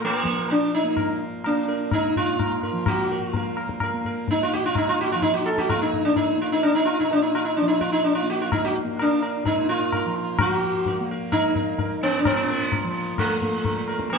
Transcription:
Already playing: tanpura A#2 F3 A#3
0.02 sitar A3, tabla na
0.17 sitar A#3
0.22 tanpura F3, sitar A#4, tabla ke
0.49 sitar D4, tabla tin
0.75 sitar D#4
0.84 tanpura A#3
0.97 sitar A#4, tabla na, tabla ge
1.44 tanpura A#3, sitar D4, tabla na
1.68 sitar A#4
1.91 sitar D#4, tabla na, tabla ge
2.09 tanpura A#2
2.16 sitar F4, tabla ge
2.39 tabla na, tabla ge
2.63 sitar A#4, tabla ge
2.72 tanpura F3
2.86 sitar F#4, tabla na, tabla ge
3.11 sitar A#4
3.26 sitar F4
3.33 tanpura A#3, sitar A#4, tabla tin, tabla ge
3.57 tabla na
3.69 tabla ke
3.80 sitar A#4, tabla na, tabla ge
3.93 tanpura A#3
4.05 sitar A#4, tabla ge
4.28 sitar D#4, tabla tin, tabla ge
4.43 sitar F4
4.53 tanpura A#2, sitar F#4
4.66 sitar F4
4.75 sitar D#4, tabla na, tabla ge
4.89 sitar F4
5.01 sitar F#4
5.12 tanpura F3, sitar F4
5.22 sitar D#4, tabla tin, tabla ge
5.34 sitar F#4
5.46 sitar A4, tabla na
5.58 sitar F#4, tabla ke
5.69 sitar F4, tabla na, tabla ge
5.77 tanpura A#3
5.82 sitar D#4
5.93 tabla ge
6.05 sitar D4
6.16 sitar D#4, tabla tin, tabla ge
6.37 tanpura A#3
6.42 sitar F4
6.52 sitar D#4
6.63 sitar D4, tabla na
6.75 sitar D#4
6.85 sitar F4, tabla na
7.00 tanpura A#2, sitar D#4
7.11 sitar D4, tabla tin
7.22 sitar D#4
7.35 sitar F4, tabla na
7.45 sitar D#4
7.57 sitar D4, tabla te
7.61 tanpura F3
7.68 sitar D#4, tabla te
7.81 sitar F4, tabla ke
7.92 sitar D#4, tabla te
8.04 sitar D4, tabla tin
8.15 sitar F4
8.22 tanpura A#3
8.30 sitar F#4
8.42 sitar F4
8.52 sitar D#4, tabla na, tabla ge
8.64 sitar F#4
8.84 tanpura A#3
8.99 sitar D4 A#4, tabla na
9.22 sitar A#4, tabla na
9.44 tanpura A#2, sitar D#4 A#4, tabla tin, tabla ge
9.69 sitar F4
9.92 sitar A#4, tabla na, tabla ge
10.05 tanpura F3
10.15 tabla te
10.39 tanpura F3, sitar F4, tabla na, tabla ge
10.52 sitar F#4
10.86 sitar A#4, tabla tin, tabla ge
11.00 tanpura A#3
11.11 sitar A#4
11.32 sitar D#4, tabla na, tabla ge
11.55 sitar A#4, tabla ge
11.60 tanpura A#3
11.79 sitar A#4, tabla tin, tabla ge
12.03 sitar B3
12.20 tanpura A#2, sitar D4
12.25 sitar B3, tabla na, tabla ge
12.50 sitar A#4
12.72 tabla tin, tabla ge
12.83 tanpura F3
13.18 sitar A3, tabla na, tabla ge
13.41 tanpura A#3, tabla ge
13.65 tabla tin, tabla ge
13.88 sitar A#4, tabla na
13.99 tanpura A#3, tabla ke
14.10 sitar A#3, tabla na

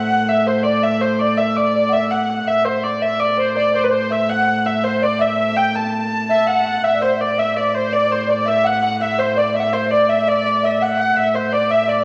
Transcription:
Already playing: viola da gamba A2, marimba F#5, hurdy-gurdy F#5
0.13 marimba F#5
0.29 hurdy-gurdy E5, marimba E5
0.47 hurdy-gurdy C5, marimba C5
0.63 hurdy-gurdy D5, marimba D5
0.83 hurdy-gurdy E5, marimba E5
1.01 hurdy-gurdy C5, marimba C5
1.19 hurdy-gurdy D5, marimba D5
1.38 hurdy-gurdy E5, marimba E5
1.56 hurdy-gurdy D5, marimba D5
1.76 marimba D5
1.89 hurdy-gurdy E5, marimba F#5
1.94 marimba E5
2.11 hurdy-gurdy F#5, marimba F#5
2.30 marimba F#5
2.48 viola da gamba A2, hurdy-gurdy E5, marimba E5
2.65 hurdy-gurdy C5, marimba C5
2.84 hurdy-gurdy D5
3.02 hurdy-gurdy E5, marimba E5
3.20 marimba D5, hurdy-gurdy D5
3.37 marimba C5, hurdy-gurdy C5 D5
3.57 marimba D5, hurdy-gurdy D5
3.74 marimba C5, hurdy-gurdy C5
3.83 hurdy-gurdy B4
3.88 marimba C5, hurdy-gurdy C5
4.11 marimba E5, hurdy-gurdy E5
4.29 hurdy-gurdy F#5, marimba F#5
4.48 marimba F#5
4.66 hurdy-gurdy E5, marimba E5
4.84 hurdy-gurdy C5, marimba C5
5.02 marimba D5, hurdy-gurdy D5
5.19 marimba E5, hurdy-gurdy E5
5.56 hurdy-gurdy G5, marimba G5
5.75 marimba A5, hurdy-gurdy A5
6.29 recorder E5, marimba E5, hurdy-gurdy E5
6.47 recorder F#5, marimba F#5, hurdy-gurdy F#5
6.66 marimba F#5
6.83 viola da gamba A2, hurdy-gurdy E5, recorder E5, marimba E5
6.94 marimba D5
7.01 marimba C5, hurdy-gurdy C5, recorder C5
7.16 recorder E5
7.21 recorder D5, hurdy-gurdy D5
7.38 recorder E5, marimba E5, hurdy-gurdy E5
7.57 hurdy-gurdy D5
7.75 recorder C5, hurdy-gurdy C5
7.91 recorder D5, marimba D5, hurdy-gurdy D5
8.10 recorder C5, hurdy-gurdy C5
8.27 recorder D5, marimba D5, hurdy-gurdy D5
8.46 recorder E5, marimba E5, hurdy-gurdy E5
8.64 marimba F#5, recorder F#5, hurdy-gurdy F#5
8.82 recorder F#5, marimba F#5
8.99 recorder E5, marimba E5, hurdy-gurdy E5
9.18 marimba C5, hurdy-gurdy C5
9.36 marimba D5, recorder D5, hurdy-gurdy D5
9.55 recorder E5, marimba E5, hurdy-gurdy E5
9.60 recorder E5 F#5
9.73 marimba C5, recorder C5, hurdy-gurdy C5
9.87 recorder D5 E5
9.91 hurdy-gurdy D5, marimba D5
10.09 marimba E5, recorder E5, hurdy-gurdy E5
10.28 marimba D5, recorder D5, hurdy-gurdy D5
10.46 recorder D5
10.63 marimba E5, recorder E5, hurdy-gurdy E5
10.71 recorder D5
10.79 recorder E5, marimba F#5, hurdy-gurdy F#5
10.98 marimba F#5, hurdy-gurdy F#5, recorder F#5
11.16 viola da gamba A2, marimba E5, hurdy-gurdy E5, recorder E5
11.34 marimba C5, hurdy-gurdy C5, recorder C5
11.53 hurdy-gurdy D5, recorder D5
11.70 marimba E5, hurdy-gurdy E5, recorder E5
11.88 marimba D5, hurdy-gurdy D5, recorder D5

